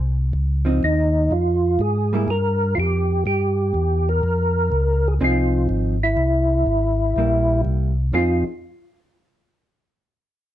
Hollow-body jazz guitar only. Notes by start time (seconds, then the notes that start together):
0.65 F3 C4 D#4
2.13 G3 A#3 E4
5.21 F3 C4 D#4 G#4
7.18 G3 A#3 E4
8.14 F3 C4 D#4 G#4